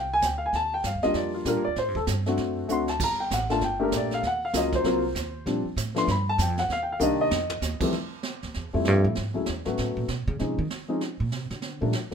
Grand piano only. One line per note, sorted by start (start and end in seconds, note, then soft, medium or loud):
0.00 0.12 G5 medium
0.13 0.24 G#5 loud
0.25 0.34 G5 medium
0.38 0.45 F5 medium
0.46 0.54 G#5 medium
0.56 0.73 A5 loud
0.74 0.85 G5 medium
0.86 1.04 F5 medium
1.03 1.43 G3 medium
1.03 1.44 A#3 medium
1.03 1.44 D4 medium
1.03 1.33 F4 medium
1.03 1.15 D#5 loud
1.16 1.34 D5 medium
1.34 1.46 F4 medium
1.46 1.63 G3 medium
1.46 1.63 A#3 medium
1.46 1.63 D4 medium
1.46 1.64 F4 medium
1.46 1.65 A#4 medium
1.65 1.76 D5 loud
1.79 1.96 C5 medium
1.96 2.03 A4 medium
2.26 2.67 A3 medium
2.26 2.67 C4 medium
2.26 2.67 D4 medium
2.26 2.67 F#4 medium
2.68 2.86 A3 medium
2.68 2.86 C4 medium
2.68 2.87 D4 medium
2.68 2.87 F#4 medium
2.72 2.89 C6 medium
2.89 3.00 A5 loud
3.04 3.20 A#5 loud
3.20 3.31 G5 medium
3.34 3.51 F#5 medium
3.50 3.60 A3 medium
3.50 3.61 A#3 medium
3.50 3.61 D4 medium
3.50 3.61 F4 medium
3.50 3.62 A5 loud
3.64 3.81 G5 medium
3.79 4.20 A3 medium
3.79 4.20 A#3 medium
3.79 4.20 D4 medium
3.79 4.21 G4 medium
3.79 3.93 A#4 medium
3.97 4.13 D5 medium
4.14 4.24 F5 medium
4.27 4.44 F#5 loud
4.45 4.55 F5 medium
4.53 4.83 F#3 medium
4.53 4.84 A#3 medium
4.53 4.84 C#4 medium
4.53 4.84 F4 medium
4.53 4.74 D#5 medium
4.75 5.44 C5 medium
4.85 5.02 F#3 medium
4.85 5.02 A#3 medium
4.85 5.03 C4 medium
4.85 5.03 F4 medium
5.46 5.63 F3 medium
5.46 5.64 G3 medium
5.46 5.64 C4 medium
5.46 5.64 D4 medium
5.95 6.06 F3 medium
5.95 6.07 A3 medium
5.95 6.07 B3 medium
5.95 6.07 D4 medium
5.95 6.09 C6 loud
6.11 6.28 B5 medium
6.29 6.40 A5 loud
6.42 6.59 G5 medium
6.59 6.70 F#5 loud
6.72 6.81 F5 loud
6.83 6.91 G5 medium
6.92 7.01 F5 medium
7.00 7.31 D#3 medium
7.00 7.31 G3 medium
7.00 7.31 A#3 medium
7.00 7.32 D4 medium
7.00 7.20 D#5 medium
7.21 7.84 D#5 loud
7.80 7.91 F2 medium
7.80 7.92 E3 medium
7.80 7.92 G3 medium
7.80 7.92 A3 medium
7.80 7.92 C4 medium
8.73 9.14 F3 medium
8.73 9.14 G3 medium
8.73 9.14 A3 medium
8.73 9.14 C4 medium
8.73 9.14 E4 medium
9.34 9.45 F#3 medium
9.34 9.45 G#3 soft
9.34 9.45 A3 soft
9.34 9.45 C#4 soft
9.34 9.45 E4 medium
9.65 10.06 F#3 medium
9.65 10.06 A3 medium
9.65 10.06 B3 soft
9.65 10.06 C#4 medium
9.65 10.07 F#4 medium
10.39 10.56 F3 soft
10.39 10.56 G#3 soft
10.39 10.56 C4 soft
10.39 10.57 C#4 soft
10.39 10.57 D#4 medium
10.88 10.99 F3 medium
10.88 10.99 G#3 medium
10.88 10.99 C4 medium
10.88 11.00 C#4 medium
10.88 11.00 D#4 medium
11.81 11.92 F3 soft
11.81 11.92 G3 medium
11.81 11.92 A3 soft
11.81 11.92 A#3 medium
11.81 11.92 D4 medium